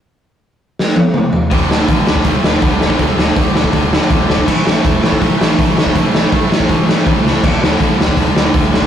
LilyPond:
<<
  \new Staff \with { instrumentName = "Distorted electric guitar" } { \clef bass \time 4/4 \key a \mixolydian \tempo 4 = 162 r1 | <d, a, d>8 <d, a, d>8 <d, a, d>8 <d, a, d>8 <d, a, d>8 <d, a, d>8 <d, a, d>8 <d, a, d>8 | <d, a, d>8 <d, a, d>8 <d, a, d>8 <d, a, d>8 <d, a, d>8 <d, a, d>8 <d, a, d>8 <d, a, d>8 | <a, e a>8 <a, e a>8 <a, e a>8 <a, e a>8 <a, e a>8 <a, e a>8 <a, e a>8 <a, e a>8 |
<a, e a>8 <a, e a>8 <a, e a>8 <a, e a>8 <a, e a>8 <a, e a>8 <a, e a>8 <a, e a>8 | <d, a, d>8 <d, a, d>8 <d, a, d>8 <d, a, d>8 <d, a, d>8 <d, a, d>8 <d, a, d>8 <d, a, d>8 | }
  \new Staff \with { instrumentName = "Distorted electric guitar" } { \clef bass \time 4/4 \key a \mixolydian r1 | <d, a, d>8 <d, a, d>8 <d, a, d>8 <d, a, d>8 <d, a, d>8 <d, a, d>8 <d, a, d>8 <d, a, d>8 | <d, a, d>8 <d, a, d>8 <d, a, d>8 <d, a, d>8 <d, a, d>8 <d, a, d>8 <d, a, d>8 <d, a, d>8 | <a, e a>8 <a, e a>8 <a, e a>8 <a, e a>8 <a, e a>8 <a, e a>8 <a, e a>8 <a, e a>8 |
<a, e a>8 <a, e a>8 <a, e a>8 <a, e a>8 <a, e a>8 <a, e a>8 <a, e a>8 <a, e a>8 | <d, a, d>8 <d, a, d>8 <d, a, d>8 <d, a, d>8 <d, a, d>8 <d, a, d>8 <d, a, d>8 <d, a, d>8 | }
  \new Staff \with { instrumentName = "Picked electric bass" } { \clef bass \time 4/4 \key a \mixolydian r1 | d,,8 d,,8 a,,8 d,,8 d,,8 d,,8 d,,4 | d,,8 d,,8 d,,8 d,,8 d,,4 d,,8 d,,8 | a,,8 a,,8 e,,8 a,,8 a,,8 a,,8 a,,4 |
a,,8 a,,8 a,,8 a,,8 a,,4 a,,8 cis,8 | d,,8 d,,8 a,,8 d,,8 d,,8 d,,8 d,,4 | }
  \new DrumStaff \with { instrumentName = "Drums" } \drummode { \time 4/4 r4 r4 sn8 tommh8 toml8 tomfh8 | <hho bd>8 sn8 <hho bd>8 sn16 bd16 <hho bd>8 sn8 <hho bd>8 sn16 bd16 | <hho bd>8 sn8 <hho bd>8 sn16 bd16 <hho bd>8 sn8 <hho bd>8 sn16 bd16 | <cymc bd>8 sn8 <hho bd>8 sn16 bd16 <hho bd>8 sn8 <hho bd>8 sn16 bd16 |
<hho bd>8 sn8 <hho bd>8 sn16 bd16 <hho bd>8 sn8 <hho bd>8 sn8 | <cymc bd>8 sn8 <hho bd>8 sn16 bd16 <hho bd>8 sn8 <hho bd>8 sn16 bd16 | }
>>